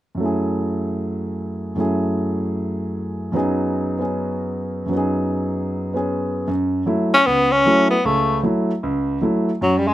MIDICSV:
0, 0, Header, 1, 3, 480
1, 0, Start_track
1, 0, Tempo, 392413
1, 234, Time_signature, 4, 2, 24, 8
1, 12155, End_track
2, 0, Start_track
2, 0, Title_t, "Tenor saxophone"
2, 0, Program_c, 0, 66
2, 8735, Note_on_c, 0, 61, 90
2, 8883, Note_on_c, 0, 59, 86
2, 8901, Note_off_c, 0, 61, 0
2, 9196, Note_on_c, 0, 61, 89
2, 9215, Note_off_c, 0, 59, 0
2, 9664, Note_off_c, 0, 61, 0
2, 9671, Note_on_c, 0, 59, 69
2, 9849, Note_on_c, 0, 57, 66
2, 9867, Note_off_c, 0, 59, 0
2, 10321, Note_off_c, 0, 57, 0
2, 11776, Note_on_c, 0, 54, 74
2, 11967, Note_on_c, 0, 55, 63
2, 11986, Note_off_c, 0, 54, 0
2, 12078, Note_on_c, 0, 56, 85
2, 12097, Note_off_c, 0, 55, 0
2, 12155, Note_off_c, 0, 56, 0
2, 12155, End_track
3, 0, Start_track
3, 0, Title_t, "Grand piano"
3, 0, Program_c, 1, 0
3, 180, Note_on_c, 1, 42, 42
3, 211, Note_on_c, 1, 54, 41
3, 246, Note_on_c, 1, 57, 39
3, 278, Note_on_c, 1, 64, 39
3, 312, Note_on_c, 1, 68, 47
3, 2125, Note_off_c, 1, 42, 0
3, 2141, Note_off_c, 1, 54, 0
3, 2144, Note_on_c, 1, 42, 43
3, 2158, Note_off_c, 1, 57, 0
3, 2159, Note_on_c, 1, 54, 40
3, 2167, Note_off_c, 1, 64, 0
3, 2176, Note_on_c, 1, 57, 40
3, 2186, Note_off_c, 1, 68, 0
3, 2186, Note_on_c, 1, 64, 38
3, 2204, Note_on_c, 1, 68, 48
3, 4042, Note_off_c, 1, 42, 0
3, 4061, Note_off_c, 1, 54, 0
3, 4061, Note_on_c, 1, 42, 51
3, 4079, Note_on_c, 1, 54, 46
3, 4089, Note_off_c, 1, 57, 0
3, 4093, Note_off_c, 1, 64, 0
3, 4095, Note_on_c, 1, 59, 45
3, 4101, Note_off_c, 1, 68, 0
3, 4104, Note_on_c, 1, 63, 48
3, 4119, Note_on_c, 1, 68, 53
3, 4860, Note_off_c, 1, 59, 0
3, 4879, Note_on_c, 1, 59, 38
3, 4902, Note_off_c, 1, 68, 0
3, 4902, Note_on_c, 1, 61, 36
3, 4920, Note_on_c, 1, 68, 43
3, 5929, Note_off_c, 1, 42, 0
3, 5948, Note_on_c, 1, 42, 46
3, 5964, Note_off_c, 1, 54, 0
3, 5982, Note_on_c, 1, 54, 43
3, 5999, Note_off_c, 1, 59, 0
3, 6010, Note_off_c, 1, 61, 0
3, 6011, Note_off_c, 1, 63, 0
3, 6019, Note_off_c, 1, 68, 0
3, 6019, Note_on_c, 1, 59, 43
3, 6047, Note_on_c, 1, 63, 42
3, 6082, Note_on_c, 1, 68, 49
3, 7245, Note_off_c, 1, 59, 0
3, 7264, Note_on_c, 1, 59, 41
3, 7280, Note_off_c, 1, 68, 0
3, 7286, Note_on_c, 1, 61, 38
3, 7298, Note_on_c, 1, 68, 46
3, 7891, Note_off_c, 1, 42, 0
3, 7909, Note_off_c, 1, 54, 0
3, 7913, Note_off_c, 1, 59, 0
3, 7921, Note_on_c, 1, 42, 62
3, 7924, Note_off_c, 1, 61, 0
3, 7930, Note_off_c, 1, 68, 0
3, 7941, Note_off_c, 1, 63, 0
3, 8334, Note_off_c, 1, 42, 0
3, 8391, Note_on_c, 1, 54, 49
3, 8400, Note_on_c, 1, 57, 41
3, 8402, Note_on_c, 1, 64, 53
3, 8724, Note_off_c, 1, 54, 0
3, 8728, Note_off_c, 1, 57, 0
3, 8729, Note_off_c, 1, 64, 0
3, 8891, Note_on_c, 1, 37, 61
3, 9299, Note_off_c, 1, 37, 0
3, 9365, Note_on_c, 1, 54, 47
3, 9370, Note_on_c, 1, 57, 44
3, 9371, Note_on_c, 1, 64, 53
3, 9690, Note_off_c, 1, 54, 0
3, 9692, Note_off_c, 1, 57, 0
3, 9693, Note_off_c, 1, 64, 0
3, 9844, Note_on_c, 1, 37, 61
3, 9850, Note_on_c, 1, 49, 65
3, 10254, Note_off_c, 1, 37, 0
3, 10258, Note_off_c, 1, 49, 0
3, 10316, Note_on_c, 1, 54, 51
3, 10317, Note_on_c, 1, 57, 42
3, 10324, Note_on_c, 1, 64, 53
3, 10645, Note_off_c, 1, 54, 0
3, 10645, Note_off_c, 1, 57, 0
3, 10648, Note_off_c, 1, 64, 0
3, 10804, Note_on_c, 1, 37, 66
3, 11213, Note_off_c, 1, 37, 0
3, 11270, Note_on_c, 1, 54, 46
3, 11281, Note_on_c, 1, 57, 44
3, 11286, Note_on_c, 1, 64, 56
3, 11601, Note_off_c, 1, 54, 0
3, 11606, Note_off_c, 1, 57, 0
3, 11609, Note_off_c, 1, 64, 0
3, 11758, Note_on_c, 1, 42, 64
3, 12155, Note_off_c, 1, 42, 0
3, 12155, End_track
0, 0, End_of_file